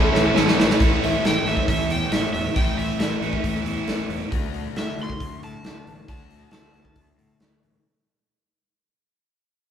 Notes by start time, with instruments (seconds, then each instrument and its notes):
Already playing: overdriven electric guitar A2 E3 A3 C#4 E4 A4
0.11 fingered electric bass A1, twelve-string acoustic guitar A3 C#4 E4, snare, cowbell
0.34 fingered electric bass A1, overdriven electric guitar A2 E3 A3 C#4 E4 A4, snare, cowbell
0.48 snare
0.56 fingered electric bass A1, overdriven electric guitar A3 C#4 E4, snare
0.70 snare
0.79 fingered electric bass A1, overdriven electric guitar A2 E3 A3 C#4 E4, kick, crash
1.01 fingered electric bass A1, electric slide guitar E5, open hi-hat
1.24 fingered electric bass A1, electric slide guitar G5, snare, open hi-hat
1.44 fingered electric bass A1, overdriven electric guitar A2 E3 A3 C#4 E4, open hi-hat
1.49 electric slide guitar E5
1.57 kick
1.68 fingered electric bass A1, electric slide guitar E5, kick, open hi-hat
1.88 fingered electric bass E2, electric slide guitar G5, open hi-hat
2.11 fingered electric bass A1, electric slide guitar E5, snare, open hi-hat
2.32 fingered electric bass E1, electric slide guitar E5, open hi-hat
2.55 fingered electric bass A1, overdriven electric guitar A2 E3 A3 C#4 E4, electric slide guitar G5, kick, open hi-hat
2.76 fingered electric bass A1, electric slide guitar E5, open hi-hat
2.98 fingered electric bass A1, electric slide guitar E5, snare, open hi-hat
3.21 fingered electric bass A1, overdriven electric guitar A2 E3 A3 C#4 E4, open hi-hat
3.33 kick
3.44 fingered electric bass A1, kick, open hi-hat
3.64 fingered electric bass E2, open hi-hat
3.87 fingered electric bass A1, snare, open hi-hat
4.08 fingered electric bass E1, open hi-hat
4.31 fingered electric bass D2, overdriven electric guitar D3 A3 D4 F#4, kick, open hi-hat
4.53 fingered electric bass D2, open hi-hat
4.75 fingered electric bass D2, electric slide guitar E5, snare, open hi-hat
4.98 fingered electric bass D2, open hi-hat
5.03 electric slide guitar C6
5.10 kick
5.20 fingered electric bass D2, kick, open hi-hat
5.42 fingered electric bass A2, electric slide guitar A5, open hi-hat
5.63 fingered electric bass D2, snare, open hi-hat
5.87 fingered electric bass A1, open hi-hat
6.08 fingered electric bass D2, overdriven electric guitar D3 A3 D4 F#4, electric slide guitar A5, kick, open hi-hat
6.30 fingered electric bass D2, open hi-hat
6.51 fingered electric bass D2, electric slide guitar A5, snare, open hi-hat
6.73 fingered electric bass D2, open hi-hat
6.85 kick
6.96 fingered electric bass D2, kick, open hi-hat
7.19 fingered electric bass A2, open hi-hat
7.40 fingered electric bass D2, snare, open hi-hat
7.63 fingered electric bass A1, open hi-hat